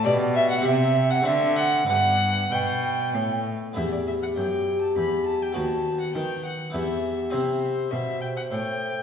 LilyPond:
<<
  \new Staff \with { instrumentName = "Violin" } { \time 3/4 \key g \major \tempo 4 = 101 d''8 e''16 fis''16 e''8. fis''16 e''8 fis''8 | fis''4 g''4. r8 | \key e \minor e''16 d''16 e''16 fis''16 g''8. a''16 b''8 a''16 g''16 | a''8. fis''16 g''8 fis''8 e''4 |
c''4 e''8 g''16 fis''16 g''4 | }
  \new Staff \with { instrumentName = "Flute" } { \time 3/4 \key g \major d''8 e''16 fis''16 e''8. fis''16 e''8 fis''8 | fis''4 g''4. r8 | \key e \minor g'2. | fis'4 b'4 g'4~ |
g'4 c''2 | }
  \new Staff \with { instrumentName = "Harpsichord" } { \time 3/4 \key g \major <d' g'>4 <c' g'>4 <a c' d'>4 | <b d'>2. | \key e \minor <b e'>2. | <b fis'>2 <b e'>4 |
<c' e'>2. | }
  \new Staff \with { instrumentName = "Harpsichord" } { \clef bass \time 3/4 \key g \major b,4 c4 d4 | g,4 b,4 a,4 | \key e \minor e,4 fis,4 e,4 | dis,4 dis4 e,4 |
c4 b,4 a,4 | }
  \new Staff \with { instrumentName = "Cello" } { \clef bass \time 3/4 \key g \major b,4 c4 d4 | g,4 b,4 a,4 | \key e \minor e,4 fis,4 e,4 | dis,4 dis4 e,4 |
c4 b,4 a,4 | }
>>